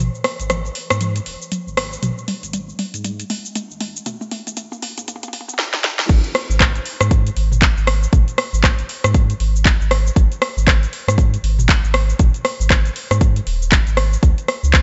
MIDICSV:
0, 0, Header, 1, 3, 480
1, 0, Start_track
1, 0, Tempo, 508475
1, 1913, Time_signature, 4, 2, 24, 8
1, 13992, End_track
2, 0, Start_track
2, 0, Title_t, "Sub bass"
2, 0, Program_c, 0, 38
2, 373, Note_on_c, 0, 32, 95
2, 653, Note_off_c, 0, 32, 0
2, 854, Note_on_c, 0, 44, 106
2, 1134, Note_off_c, 0, 44, 0
2, 1193, Note_on_c, 0, 27, 96
2, 1282, Note_off_c, 0, 27, 0
2, 1576, Note_on_c, 0, 32, 83
2, 1854, Note_off_c, 0, 32, 0
2, 1910, Note_on_c, 0, 32, 105
2, 2000, Note_off_c, 0, 32, 0
2, 2294, Note_on_c, 0, 32, 100
2, 2573, Note_off_c, 0, 32, 0
2, 2774, Note_on_c, 0, 44, 108
2, 3054, Note_off_c, 0, 44, 0
2, 3112, Note_on_c, 0, 27, 97
2, 3201, Note_off_c, 0, 27, 0
2, 3497, Note_on_c, 0, 32, 87
2, 3775, Note_off_c, 0, 32, 0
2, 3832, Note_on_c, 0, 32, 107
2, 3921, Note_off_c, 0, 32, 0
2, 4212, Note_on_c, 0, 32, 96
2, 4492, Note_off_c, 0, 32, 0
2, 4694, Note_on_c, 0, 44, 107
2, 4974, Note_off_c, 0, 44, 0
2, 5032, Note_on_c, 0, 27, 98
2, 5121, Note_off_c, 0, 27, 0
2, 5753, Note_on_c, 0, 32, 106
2, 5842, Note_off_c, 0, 32, 0
2, 6133, Note_on_c, 0, 32, 101
2, 6413, Note_off_c, 0, 32, 0
2, 6614, Note_on_c, 0, 44, 106
2, 6893, Note_off_c, 0, 44, 0
2, 6953, Note_on_c, 0, 32, 100
2, 7250, Note_off_c, 0, 32, 0
2, 7336, Note_on_c, 0, 32, 94
2, 7615, Note_off_c, 0, 32, 0
2, 7674, Note_on_c, 0, 32, 108
2, 7762, Note_off_c, 0, 32, 0
2, 8053, Note_on_c, 0, 32, 96
2, 8333, Note_off_c, 0, 32, 0
2, 8537, Note_on_c, 0, 44, 104
2, 8815, Note_off_c, 0, 44, 0
2, 8875, Note_on_c, 0, 32, 101
2, 9171, Note_off_c, 0, 32, 0
2, 9258, Note_on_c, 0, 32, 96
2, 9536, Note_off_c, 0, 32, 0
2, 9594, Note_on_c, 0, 32, 100
2, 9683, Note_off_c, 0, 32, 0
2, 9979, Note_on_c, 0, 32, 96
2, 10256, Note_off_c, 0, 32, 0
2, 10458, Note_on_c, 0, 44, 102
2, 10735, Note_off_c, 0, 44, 0
2, 10793, Note_on_c, 0, 32, 100
2, 11090, Note_off_c, 0, 32, 0
2, 11176, Note_on_c, 0, 32, 97
2, 11455, Note_off_c, 0, 32, 0
2, 11512, Note_on_c, 0, 32, 108
2, 11602, Note_off_c, 0, 32, 0
2, 11895, Note_on_c, 0, 32, 95
2, 12174, Note_off_c, 0, 32, 0
2, 12374, Note_on_c, 0, 44, 110
2, 12654, Note_off_c, 0, 44, 0
2, 12712, Note_on_c, 0, 27, 105
2, 13009, Note_off_c, 0, 27, 0
2, 13093, Note_on_c, 0, 32, 100
2, 13373, Note_off_c, 0, 32, 0
2, 13430, Note_on_c, 0, 37, 100
2, 13520, Note_off_c, 0, 37, 0
2, 13814, Note_on_c, 0, 37, 95
2, 13992, Note_off_c, 0, 37, 0
2, 13992, End_track
3, 0, Start_track
3, 0, Title_t, "Drums"
3, 0, Note_on_c, 9, 82, 65
3, 92, Note_off_c, 9, 82, 0
3, 140, Note_on_c, 9, 82, 39
3, 230, Note_on_c, 9, 37, 94
3, 230, Note_on_c, 9, 46, 87
3, 235, Note_off_c, 9, 82, 0
3, 324, Note_off_c, 9, 37, 0
3, 324, Note_off_c, 9, 46, 0
3, 374, Note_on_c, 9, 42, 31
3, 380, Note_on_c, 9, 82, 82
3, 468, Note_off_c, 9, 42, 0
3, 470, Note_on_c, 9, 37, 95
3, 470, Note_on_c, 9, 42, 60
3, 470, Note_on_c, 9, 47, 59
3, 475, Note_off_c, 9, 82, 0
3, 477, Note_on_c, 9, 82, 65
3, 565, Note_off_c, 9, 37, 0
3, 565, Note_off_c, 9, 42, 0
3, 565, Note_off_c, 9, 47, 0
3, 571, Note_off_c, 9, 82, 0
3, 619, Note_on_c, 9, 82, 39
3, 709, Note_on_c, 9, 46, 90
3, 713, Note_off_c, 9, 82, 0
3, 803, Note_off_c, 9, 46, 0
3, 853, Note_on_c, 9, 37, 98
3, 853, Note_on_c, 9, 42, 44
3, 860, Note_on_c, 9, 82, 81
3, 948, Note_off_c, 9, 37, 0
3, 948, Note_off_c, 9, 42, 0
3, 950, Note_on_c, 9, 42, 62
3, 950, Note_on_c, 9, 47, 66
3, 955, Note_off_c, 9, 82, 0
3, 957, Note_on_c, 9, 82, 66
3, 1045, Note_off_c, 9, 42, 0
3, 1045, Note_off_c, 9, 47, 0
3, 1051, Note_off_c, 9, 82, 0
3, 1092, Note_on_c, 9, 42, 44
3, 1099, Note_on_c, 9, 82, 41
3, 1187, Note_off_c, 9, 42, 0
3, 1191, Note_on_c, 9, 46, 86
3, 1194, Note_off_c, 9, 82, 0
3, 1285, Note_off_c, 9, 46, 0
3, 1339, Note_on_c, 9, 82, 82
3, 1432, Note_on_c, 9, 42, 64
3, 1432, Note_on_c, 9, 47, 70
3, 1434, Note_off_c, 9, 82, 0
3, 1438, Note_on_c, 9, 82, 71
3, 1526, Note_off_c, 9, 42, 0
3, 1526, Note_off_c, 9, 47, 0
3, 1533, Note_off_c, 9, 82, 0
3, 1584, Note_on_c, 9, 82, 40
3, 1674, Note_on_c, 9, 37, 95
3, 1674, Note_on_c, 9, 46, 88
3, 1679, Note_off_c, 9, 82, 0
3, 1768, Note_off_c, 9, 37, 0
3, 1768, Note_off_c, 9, 46, 0
3, 1820, Note_on_c, 9, 82, 74
3, 1913, Note_on_c, 9, 42, 66
3, 1913, Note_on_c, 9, 45, 94
3, 1913, Note_on_c, 9, 47, 73
3, 1915, Note_off_c, 9, 82, 0
3, 1919, Note_on_c, 9, 82, 72
3, 2007, Note_off_c, 9, 42, 0
3, 2007, Note_off_c, 9, 45, 0
3, 2007, Note_off_c, 9, 47, 0
3, 2014, Note_off_c, 9, 82, 0
3, 2061, Note_on_c, 9, 82, 40
3, 2151, Note_on_c, 9, 46, 85
3, 2151, Note_on_c, 9, 47, 78
3, 2156, Note_off_c, 9, 82, 0
3, 2246, Note_off_c, 9, 46, 0
3, 2246, Note_off_c, 9, 47, 0
3, 2296, Note_on_c, 9, 42, 30
3, 2303, Note_on_c, 9, 82, 81
3, 2390, Note_off_c, 9, 42, 0
3, 2392, Note_on_c, 9, 42, 59
3, 2392, Note_on_c, 9, 47, 74
3, 2397, Note_off_c, 9, 82, 0
3, 2399, Note_on_c, 9, 82, 70
3, 2486, Note_off_c, 9, 42, 0
3, 2486, Note_off_c, 9, 47, 0
3, 2493, Note_off_c, 9, 82, 0
3, 2542, Note_on_c, 9, 82, 42
3, 2632, Note_on_c, 9, 46, 87
3, 2632, Note_on_c, 9, 47, 80
3, 2636, Note_off_c, 9, 82, 0
3, 2727, Note_off_c, 9, 46, 0
3, 2727, Note_off_c, 9, 47, 0
3, 2775, Note_on_c, 9, 42, 41
3, 2782, Note_on_c, 9, 82, 78
3, 2869, Note_off_c, 9, 42, 0
3, 2874, Note_on_c, 9, 42, 64
3, 2874, Note_on_c, 9, 47, 76
3, 2876, Note_off_c, 9, 82, 0
3, 2881, Note_on_c, 9, 82, 69
3, 2969, Note_off_c, 9, 42, 0
3, 2969, Note_off_c, 9, 47, 0
3, 2975, Note_off_c, 9, 82, 0
3, 3017, Note_on_c, 9, 42, 44
3, 3024, Note_on_c, 9, 82, 43
3, 3111, Note_off_c, 9, 42, 0
3, 3114, Note_on_c, 9, 46, 85
3, 3114, Note_on_c, 9, 47, 85
3, 3118, Note_off_c, 9, 82, 0
3, 3209, Note_off_c, 9, 46, 0
3, 3209, Note_off_c, 9, 47, 0
3, 3261, Note_on_c, 9, 82, 84
3, 3355, Note_off_c, 9, 82, 0
3, 3355, Note_on_c, 9, 42, 69
3, 3355, Note_on_c, 9, 47, 88
3, 3362, Note_on_c, 9, 82, 73
3, 3450, Note_off_c, 9, 42, 0
3, 3450, Note_off_c, 9, 47, 0
3, 3456, Note_off_c, 9, 82, 0
3, 3504, Note_on_c, 9, 82, 40
3, 3592, Note_on_c, 9, 46, 84
3, 3592, Note_on_c, 9, 47, 91
3, 3598, Note_off_c, 9, 82, 0
3, 3687, Note_off_c, 9, 46, 0
3, 3687, Note_off_c, 9, 47, 0
3, 3742, Note_on_c, 9, 82, 83
3, 3833, Note_on_c, 9, 42, 65
3, 3833, Note_on_c, 9, 45, 101
3, 3833, Note_on_c, 9, 47, 89
3, 3836, Note_off_c, 9, 82, 0
3, 3840, Note_on_c, 9, 82, 66
3, 3928, Note_off_c, 9, 42, 0
3, 3928, Note_off_c, 9, 45, 0
3, 3928, Note_off_c, 9, 47, 0
3, 3934, Note_off_c, 9, 82, 0
3, 3974, Note_on_c, 9, 47, 80
3, 3981, Note_on_c, 9, 82, 41
3, 4068, Note_off_c, 9, 47, 0
3, 4073, Note_on_c, 9, 46, 84
3, 4073, Note_on_c, 9, 47, 94
3, 4075, Note_off_c, 9, 82, 0
3, 4167, Note_off_c, 9, 46, 0
3, 4167, Note_off_c, 9, 47, 0
3, 4219, Note_on_c, 9, 42, 30
3, 4219, Note_on_c, 9, 47, 81
3, 4226, Note_on_c, 9, 82, 81
3, 4312, Note_off_c, 9, 42, 0
3, 4312, Note_off_c, 9, 47, 0
3, 4312, Note_on_c, 9, 42, 62
3, 4312, Note_on_c, 9, 47, 96
3, 4319, Note_off_c, 9, 82, 0
3, 4319, Note_on_c, 9, 82, 68
3, 4406, Note_off_c, 9, 42, 0
3, 4406, Note_off_c, 9, 47, 0
3, 4413, Note_off_c, 9, 82, 0
3, 4454, Note_on_c, 9, 47, 91
3, 4461, Note_on_c, 9, 82, 43
3, 4548, Note_off_c, 9, 47, 0
3, 4554, Note_on_c, 9, 46, 86
3, 4554, Note_on_c, 9, 47, 101
3, 4555, Note_off_c, 9, 82, 0
3, 4648, Note_off_c, 9, 46, 0
3, 4648, Note_off_c, 9, 47, 0
3, 4697, Note_on_c, 9, 42, 45
3, 4697, Note_on_c, 9, 47, 86
3, 4704, Note_on_c, 9, 82, 80
3, 4792, Note_off_c, 9, 42, 0
3, 4792, Note_off_c, 9, 47, 0
3, 4795, Note_on_c, 9, 42, 64
3, 4795, Note_on_c, 9, 47, 100
3, 4798, Note_off_c, 9, 82, 0
3, 4801, Note_on_c, 9, 82, 68
3, 4867, Note_off_c, 9, 47, 0
3, 4867, Note_on_c, 9, 47, 93
3, 4889, Note_off_c, 9, 42, 0
3, 4896, Note_off_c, 9, 82, 0
3, 4938, Note_off_c, 9, 47, 0
3, 4938, Note_on_c, 9, 42, 44
3, 4938, Note_on_c, 9, 47, 97
3, 4945, Note_on_c, 9, 82, 44
3, 4984, Note_off_c, 9, 47, 0
3, 4984, Note_on_c, 9, 47, 94
3, 5032, Note_off_c, 9, 42, 0
3, 5032, Note_off_c, 9, 47, 0
3, 5032, Note_on_c, 9, 46, 84
3, 5032, Note_on_c, 9, 47, 102
3, 5039, Note_off_c, 9, 82, 0
3, 5103, Note_off_c, 9, 47, 0
3, 5103, Note_on_c, 9, 47, 92
3, 5126, Note_off_c, 9, 46, 0
3, 5176, Note_off_c, 9, 47, 0
3, 5176, Note_on_c, 9, 47, 88
3, 5183, Note_on_c, 9, 82, 83
3, 5225, Note_off_c, 9, 47, 0
3, 5225, Note_on_c, 9, 47, 88
3, 5274, Note_on_c, 9, 38, 65
3, 5277, Note_off_c, 9, 82, 0
3, 5319, Note_off_c, 9, 47, 0
3, 5368, Note_off_c, 9, 38, 0
3, 5415, Note_on_c, 9, 38, 61
3, 5509, Note_off_c, 9, 38, 0
3, 5513, Note_on_c, 9, 38, 89
3, 5608, Note_off_c, 9, 38, 0
3, 5654, Note_on_c, 9, 38, 80
3, 5749, Note_off_c, 9, 38, 0
3, 5752, Note_on_c, 9, 36, 119
3, 5752, Note_on_c, 9, 42, 65
3, 5752, Note_on_c, 9, 49, 106
3, 5759, Note_on_c, 9, 82, 64
3, 5846, Note_off_c, 9, 42, 0
3, 5846, Note_off_c, 9, 49, 0
3, 5847, Note_off_c, 9, 36, 0
3, 5853, Note_off_c, 9, 82, 0
3, 5892, Note_on_c, 9, 42, 31
3, 5899, Note_on_c, 9, 82, 40
3, 5987, Note_off_c, 9, 42, 0
3, 5994, Note_off_c, 9, 82, 0
3, 5994, Note_on_c, 9, 37, 93
3, 5994, Note_on_c, 9, 46, 91
3, 6088, Note_off_c, 9, 37, 0
3, 6088, Note_off_c, 9, 46, 0
3, 6144, Note_on_c, 9, 82, 81
3, 6233, Note_on_c, 9, 36, 115
3, 6235, Note_on_c, 9, 37, 90
3, 6235, Note_on_c, 9, 39, 92
3, 6235, Note_on_c, 9, 42, 65
3, 6238, Note_off_c, 9, 82, 0
3, 6241, Note_on_c, 9, 82, 66
3, 6327, Note_off_c, 9, 36, 0
3, 6329, Note_off_c, 9, 37, 0
3, 6329, Note_off_c, 9, 39, 0
3, 6329, Note_off_c, 9, 42, 0
3, 6336, Note_off_c, 9, 82, 0
3, 6377, Note_on_c, 9, 42, 33
3, 6383, Note_on_c, 9, 82, 42
3, 6471, Note_off_c, 9, 42, 0
3, 6471, Note_on_c, 9, 46, 98
3, 6478, Note_off_c, 9, 82, 0
3, 6566, Note_off_c, 9, 46, 0
3, 6614, Note_on_c, 9, 37, 98
3, 6614, Note_on_c, 9, 42, 46
3, 6620, Note_on_c, 9, 82, 81
3, 6708, Note_off_c, 9, 37, 0
3, 6708, Note_off_c, 9, 42, 0
3, 6712, Note_on_c, 9, 36, 114
3, 6713, Note_on_c, 9, 42, 66
3, 6715, Note_off_c, 9, 82, 0
3, 6720, Note_on_c, 9, 82, 65
3, 6806, Note_off_c, 9, 36, 0
3, 6808, Note_off_c, 9, 42, 0
3, 6814, Note_off_c, 9, 82, 0
3, 6859, Note_on_c, 9, 42, 49
3, 6866, Note_on_c, 9, 82, 42
3, 6953, Note_on_c, 9, 46, 91
3, 6954, Note_off_c, 9, 42, 0
3, 6960, Note_off_c, 9, 82, 0
3, 7048, Note_off_c, 9, 46, 0
3, 7096, Note_on_c, 9, 45, 75
3, 7103, Note_on_c, 9, 82, 79
3, 7190, Note_off_c, 9, 45, 0
3, 7192, Note_on_c, 9, 36, 124
3, 7194, Note_on_c, 9, 39, 99
3, 7194, Note_on_c, 9, 42, 70
3, 7197, Note_off_c, 9, 82, 0
3, 7200, Note_on_c, 9, 82, 69
3, 7286, Note_off_c, 9, 36, 0
3, 7288, Note_off_c, 9, 39, 0
3, 7288, Note_off_c, 9, 42, 0
3, 7295, Note_off_c, 9, 82, 0
3, 7340, Note_on_c, 9, 82, 40
3, 7432, Note_on_c, 9, 37, 97
3, 7432, Note_on_c, 9, 46, 90
3, 7435, Note_off_c, 9, 82, 0
3, 7527, Note_off_c, 9, 37, 0
3, 7527, Note_off_c, 9, 46, 0
3, 7582, Note_on_c, 9, 82, 78
3, 7672, Note_on_c, 9, 36, 127
3, 7672, Note_on_c, 9, 42, 64
3, 7672, Note_on_c, 9, 45, 83
3, 7677, Note_off_c, 9, 82, 0
3, 7679, Note_on_c, 9, 82, 68
3, 7766, Note_off_c, 9, 36, 0
3, 7767, Note_off_c, 9, 42, 0
3, 7767, Note_off_c, 9, 45, 0
3, 7774, Note_off_c, 9, 82, 0
3, 7815, Note_on_c, 9, 42, 31
3, 7822, Note_on_c, 9, 82, 39
3, 7910, Note_off_c, 9, 42, 0
3, 7911, Note_on_c, 9, 37, 97
3, 7911, Note_on_c, 9, 46, 91
3, 7916, Note_off_c, 9, 82, 0
3, 8005, Note_off_c, 9, 37, 0
3, 8005, Note_off_c, 9, 46, 0
3, 8062, Note_on_c, 9, 82, 86
3, 8152, Note_on_c, 9, 36, 122
3, 8153, Note_on_c, 9, 37, 97
3, 8153, Note_on_c, 9, 39, 89
3, 8153, Note_on_c, 9, 42, 63
3, 8157, Note_off_c, 9, 82, 0
3, 8160, Note_on_c, 9, 82, 67
3, 8246, Note_off_c, 9, 36, 0
3, 8248, Note_off_c, 9, 37, 0
3, 8248, Note_off_c, 9, 39, 0
3, 8248, Note_off_c, 9, 42, 0
3, 8254, Note_off_c, 9, 82, 0
3, 8294, Note_on_c, 9, 42, 31
3, 8301, Note_on_c, 9, 82, 42
3, 8389, Note_off_c, 9, 42, 0
3, 8394, Note_on_c, 9, 46, 90
3, 8396, Note_off_c, 9, 82, 0
3, 8488, Note_off_c, 9, 46, 0
3, 8536, Note_on_c, 9, 37, 96
3, 8536, Note_on_c, 9, 42, 45
3, 8543, Note_on_c, 9, 82, 79
3, 8631, Note_off_c, 9, 37, 0
3, 8631, Note_off_c, 9, 42, 0
3, 8632, Note_on_c, 9, 36, 117
3, 8632, Note_on_c, 9, 42, 67
3, 8637, Note_off_c, 9, 82, 0
3, 8639, Note_on_c, 9, 82, 72
3, 8727, Note_off_c, 9, 36, 0
3, 8727, Note_off_c, 9, 42, 0
3, 8734, Note_off_c, 9, 82, 0
3, 8778, Note_on_c, 9, 42, 46
3, 8785, Note_on_c, 9, 82, 44
3, 8872, Note_off_c, 9, 42, 0
3, 8875, Note_on_c, 9, 46, 89
3, 8879, Note_off_c, 9, 82, 0
3, 8969, Note_off_c, 9, 46, 0
3, 9024, Note_on_c, 9, 82, 81
3, 9113, Note_on_c, 9, 36, 127
3, 9115, Note_on_c, 9, 39, 101
3, 9115, Note_on_c, 9, 42, 67
3, 9118, Note_off_c, 9, 82, 0
3, 9121, Note_on_c, 9, 82, 71
3, 9208, Note_off_c, 9, 36, 0
3, 9209, Note_off_c, 9, 39, 0
3, 9209, Note_off_c, 9, 42, 0
3, 9216, Note_off_c, 9, 82, 0
3, 9266, Note_on_c, 9, 82, 42
3, 9355, Note_on_c, 9, 37, 99
3, 9355, Note_on_c, 9, 46, 92
3, 9361, Note_off_c, 9, 82, 0
3, 9450, Note_off_c, 9, 37, 0
3, 9450, Note_off_c, 9, 46, 0
3, 9506, Note_on_c, 9, 82, 83
3, 9594, Note_on_c, 9, 36, 123
3, 9598, Note_on_c, 9, 42, 65
3, 9600, Note_off_c, 9, 82, 0
3, 9604, Note_on_c, 9, 82, 66
3, 9688, Note_off_c, 9, 36, 0
3, 9692, Note_off_c, 9, 42, 0
3, 9699, Note_off_c, 9, 82, 0
3, 9739, Note_on_c, 9, 42, 30
3, 9746, Note_on_c, 9, 82, 41
3, 9834, Note_off_c, 9, 42, 0
3, 9834, Note_on_c, 9, 37, 98
3, 9834, Note_on_c, 9, 46, 84
3, 9840, Note_off_c, 9, 82, 0
3, 9928, Note_off_c, 9, 37, 0
3, 9928, Note_off_c, 9, 46, 0
3, 9986, Note_on_c, 9, 82, 82
3, 10074, Note_on_c, 9, 36, 127
3, 10080, Note_off_c, 9, 82, 0
3, 10080, Note_on_c, 9, 37, 95
3, 10080, Note_on_c, 9, 39, 99
3, 10080, Note_on_c, 9, 42, 61
3, 10086, Note_on_c, 9, 82, 67
3, 10168, Note_off_c, 9, 36, 0
3, 10174, Note_off_c, 9, 37, 0
3, 10174, Note_off_c, 9, 39, 0
3, 10174, Note_off_c, 9, 42, 0
3, 10181, Note_off_c, 9, 82, 0
3, 10224, Note_on_c, 9, 42, 31
3, 10231, Note_on_c, 9, 82, 45
3, 10317, Note_on_c, 9, 46, 87
3, 10319, Note_off_c, 9, 42, 0
3, 10325, Note_off_c, 9, 82, 0
3, 10412, Note_off_c, 9, 46, 0
3, 10463, Note_on_c, 9, 37, 95
3, 10463, Note_on_c, 9, 42, 43
3, 10470, Note_on_c, 9, 82, 86
3, 10553, Note_on_c, 9, 36, 117
3, 10558, Note_off_c, 9, 37, 0
3, 10558, Note_off_c, 9, 42, 0
3, 10562, Note_on_c, 9, 42, 64
3, 10564, Note_off_c, 9, 82, 0
3, 10568, Note_on_c, 9, 82, 68
3, 10648, Note_off_c, 9, 36, 0
3, 10656, Note_off_c, 9, 42, 0
3, 10663, Note_off_c, 9, 82, 0
3, 10703, Note_on_c, 9, 42, 46
3, 10709, Note_on_c, 9, 82, 45
3, 10797, Note_off_c, 9, 42, 0
3, 10799, Note_on_c, 9, 46, 85
3, 10804, Note_off_c, 9, 82, 0
3, 10893, Note_off_c, 9, 46, 0
3, 10939, Note_on_c, 9, 45, 84
3, 10946, Note_on_c, 9, 82, 82
3, 11033, Note_off_c, 9, 45, 0
3, 11033, Note_on_c, 9, 36, 127
3, 11037, Note_on_c, 9, 39, 105
3, 11037, Note_on_c, 9, 42, 65
3, 11040, Note_off_c, 9, 82, 0
3, 11043, Note_on_c, 9, 82, 74
3, 11128, Note_off_c, 9, 36, 0
3, 11131, Note_off_c, 9, 39, 0
3, 11131, Note_off_c, 9, 42, 0
3, 11138, Note_off_c, 9, 82, 0
3, 11182, Note_on_c, 9, 82, 43
3, 11271, Note_on_c, 9, 37, 96
3, 11271, Note_on_c, 9, 46, 89
3, 11276, Note_off_c, 9, 82, 0
3, 11366, Note_off_c, 9, 37, 0
3, 11366, Note_off_c, 9, 46, 0
3, 11418, Note_on_c, 9, 82, 78
3, 11510, Note_on_c, 9, 42, 63
3, 11510, Note_on_c, 9, 45, 91
3, 11512, Note_on_c, 9, 36, 119
3, 11513, Note_off_c, 9, 82, 0
3, 11517, Note_on_c, 9, 82, 71
3, 11605, Note_off_c, 9, 42, 0
3, 11605, Note_off_c, 9, 45, 0
3, 11607, Note_off_c, 9, 36, 0
3, 11612, Note_off_c, 9, 82, 0
3, 11652, Note_on_c, 9, 42, 31
3, 11659, Note_on_c, 9, 82, 40
3, 11746, Note_off_c, 9, 42, 0
3, 11750, Note_on_c, 9, 37, 93
3, 11750, Note_on_c, 9, 46, 90
3, 11753, Note_off_c, 9, 82, 0
3, 11845, Note_off_c, 9, 37, 0
3, 11845, Note_off_c, 9, 46, 0
3, 11903, Note_on_c, 9, 82, 85
3, 11991, Note_on_c, 9, 36, 121
3, 11993, Note_on_c, 9, 37, 91
3, 11993, Note_on_c, 9, 39, 99
3, 11993, Note_on_c, 9, 42, 67
3, 11997, Note_off_c, 9, 82, 0
3, 11999, Note_on_c, 9, 82, 66
3, 12086, Note_off_c, 9, 36, 0
3, 12087, Note_off_c, 9, 37, 0
3, 12087, Note_off_c, 9, 39, 0
3, 12087, Note_off_c, 9, 42, 0
3, 12094, Note_off_c, 9, 82, 0
3, 12135, Note_on_c, 9, 42, 31
3, 12142, Note_on_c, 9, 82, 42
3, 12230, Note_off_c, 9, 42, 0
3, 12233, Note_on_c, 9, 46, 91
3, 12236, Note_off_c, 9, 82, 0
3, 12327, Note_off_c, 9, 46, 0
3, 12376, Note_on_c, 9, 37, 88
3, 12376, Note_on_c, 9, 42, 43
3, 12383, Note_on_c, 9, 82, 80
3, 12470, Note_off_c, 9, 37, 0
3, 12470, Note_off_c, 9, 42, 0
3, 12471, Note_on_c, 9, 36, 125
3, 12472, Note_on_c, 9, 42, 66
3, 12477, Note_off_c, 9, 82, 0
3, 12478, Note_on_c, 9, 82, 69
3, 12565, Note_off_c, 9, 36, 0
3, 12566, Note_off_c, 9, 42, 0
3, 12573, Note_off_c, 9, 82, 0
3, 12615, Note_on_c, 9, 42, 45
3, 12622, Note_on_c, 9, 82, 42
3, 12709, Note_off_c, 9, 42, 0
3, 12714, Note_on_c, 9, 46, 88
3, 12716, Note_off_c, 9, 82, 0
3, 12808, Note_off_c, 9, 46, 0
3, 12860, Note_on_c, 9, 82, 80
3, 12950, Note_on_c, 9, 39, 107
3, 12950, Note_on_c, 9, 42, 69
3, 12952, Note_on_c, 9, 36, 123
3, 12955, Note_off_c, 9, 82, 0
3, 12956, Note_on_c, 9, 82, 72
3, 13044, Note_off_c, 9, 39, 0
3, 13044, Note_off_c, 9, 42, 0
3, 13046, Note_off_c, 9, 36, 0
3, 13051, Note_off_c, 9, 82, 0
3, 13093, Note_on_c, 9, 42, 31
3, 13099, Note_on_c, 9, 82, 41
3, 13187, Note_off_c, 9, 42, 0
3, 13189, Note_on_c, 9, 37, 95
3, 13189, Note_on_c, 9, 46, 82
3, 13194, Note_off_c, 9, 82, 0
3, 13283, Note_off_c, 9, 37, 0
3, 13283, Note_off_c, 9, 46, 0
3, 13339, Note_on_c, 9, 82, 79
3, 13431, Note_on_c, 9, 36, 115
3, 13432, Note_on_c, 9, 42, 70
3, 13434, Note_off_c, 9, 82, 0
3, 13439, Note_on_c, 9, 82, 64
3, 13525, Note_off_c, 9, 36, 0
3, 13527, Note_off_c, 9, 42, 0
3, 13533, Note_off_c, 9, 82, 0
3, 13576, Note_on_c, 9, 42, 32
3, 13583, Note_on_c, 9, 82, 39
3, 13670, Note_off_c, 9, 42, 0
3, 13673, Note_on_c, 9, 37, 87
3, 13673, Note_on_c, 9, 46, 83
3, 13677, Note_off_c, 9, 82, 0
3, 13767, Note_off_c, 9, 37, 0
3, 13767, Note_off_c, 9, 46, 0
3, 13820, Note_on_c, 9, 82, 81
3, 13910, Note_on_c, 9, 37, 92
3, 13910, Note_on_c, 9, 39, 106
3, 13910, Note_on_c, 9, 42, 67
3, 13911, Note_on_c, 9, 36, 121
3, 13915, Note_off_c, 9, 82, 0
3, 13917, Note_on_c, 9, 82, 64
3, 13992, Note_off_c, 9, 36, 0
3, 13992, Note_off_c, 9, 37, 0
3, 13992, Note_off_c, 9, 39, 0
3, 13992, Note_off_c, 9, 42, 0
3, 13992, Note_off_c, 9, 82, 0
3, 13992, End_track
0, 0, End_of_file